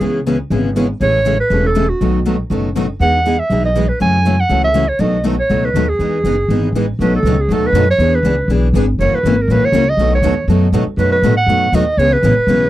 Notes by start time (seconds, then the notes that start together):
Already playing: G#4
0.00 C#2 C#3 E3 G#3 B3 C#4 E4 G#4
0.26 C#3 E3 G#3 B3 C#4 E4 G#4
0.50 G#1 C#3 E3 G#3 B3 C#4 E4 G#4
0.76 C#3 E3 G#3 B3 C#4 E4 G#4
1.00 A1 C#3 E3 G#3 A3 C#4 E4 G#4 A4 C#5
1.25 C#3 E3 G#3 A3 C#4 E4 G#4 A4
1.40 B4
1.50 E1 C#3 E3 G#3 A3 C#4 E4 G#4 A4
1.66 A4
1.75 C#3 E3 G#3 A3 C#4 E4 G#4 A4
1.90 F#4
2.01 B1 B2 D#3 F#3 A3 B3 D#4 F#4 A4
2.26 B2 D#3 F#3 A3 B3 D#4 F#4 A4
2.50 F#1 B2 D#3 F#3 A3 B3 D#4 F#4 A4
2.75 B2 D#3 F#3 A3 B3 D#4 F#4 A4
3.00 E2 E3 G#3 B3 D#4 G#4 F#5
3.25 E3 G#3 B3 D#4 G#4
3.39 E5
3.50 B1 E3 G#3 B3 D#4 G#4
3.65 D#5
3.76 E3 G#3 B3 D#4 G#4
3.89 B4
4.00 F#2 C#3 E3 F#3 A3 C#4 E4 F#4 A4 G#5
4.25 C#3 E3 F#3 A3 C#4 E4 F#4 A4
4.40 F#5
4.49 C#2 C#3 E3 F#3 A3 C#4 E4 F#4 A4
4.64 E5
4.74 C#3 E3 F#3 A3 C#4 E4 F#4 A4
4.89 C#5
4.99 B1 B2 D#3 F#3 A3 B3 D#4 F#4 A4 D#5
5.24 B2 D#3 F#3 A3 B3 D#4 F#4 A4
5.39 C#5
5.50 C#2 B2 D#3 F#3 A3 B3 D#4 F#4 A4
5.65 B4
5.74 D#2 B2 D#3 F#3 A3 B3 D#4 F#4 A4
5.89 G#4
5.99 E2 E3 G#3 B3 D#4 G#4
6.24 F#1 E3 G#3 B3 D#4 G#4
6.48 G#1 E3 G#3 B3 D#4 G#4
6.73 A1 E3 G#3 B3 D#4
6.77 G#4
6.99 B1 B2 D#3 F#3 A3 B3 D#4 F#4 A4 B4
7.16 A4
7.23 C#2 B2 D#3 F#3 A3 B3 D#4 A4
7.27 F#4
7.41 G#4
7.49 D#2 B2 D#3 F#3 A3 B3 D#4 F#4 A4
7.53 A4
7.66 B4
7.73 F#2 B2 D#3 F#3 A3 B3 D#4 F#4 A4
7.91 C#5
7.98 E2 E3 B3 D4 G#4 B4
8.15 B4
8.23 C#2 E3 B3 D4 G#4 B4
8.48 B1 E3 B3 D4 G#4 B4
8.74 G#1 E3 B3 D4 G#4 B4
8.99 F#1 C#3 E3 F#3 A#3 C#4 E4 F#4 A#4 C#5
9.12 B4, muted upright bass stroke
9.23 G#1 C#3 E3 F#3 A#3 C#4 E4 F#4 A#4
9.41 A#4
9.48 A#1 C#3 E3 F#3 A#3 C#4 E4 F#4 B4
9.52 A#4
9.62 C#5, muted upright bass stroke
9.72 C#2 C#3 E3 F#3 A#3 C#4 E4 F#4 A#4
9.90 D#5
9.97 B1 B2 D#3 F#3 A3 B3 D#4 F#4
10.01 A4
10.15 C#5
10.22 D#2 B2 D#3 F#3 A3 B3 D#4 F#4 A4
10.48 F#2 B2 D#3 F#3 A3 B3 D#4 F#4 A4
10.72 G#2 B2 D#3 F#3 A3 B3 D#4 F#4 A4
10.87 muted upright bass stroke
10.97 F#2 B2 D#3 F#3 A3 B3 D#4 F#4 A4 B4
11.12 B4
11.22 A2 B2 D#3 F#3 A3 B3 D#4 F#4 A4
11.37 F#5
11.47 F#2 B2 D#3 F#3 A3 B3 D#4 F#4 A4
11.72 D#2 B2 D#3 F#3 A3 B3 D#4 F#4 A4 D#5
11.97 C#2 C#3 E3 G#3 B3 C#4 E4 G#4 C#5
12.13 B4
12.23 A1 C#3 E3 G#3 B3 C#4 E4 G#4
12.37 muted upright bass stroke
12.47 B1 C#3 E3 G#3 B3 C#4 E4 G#4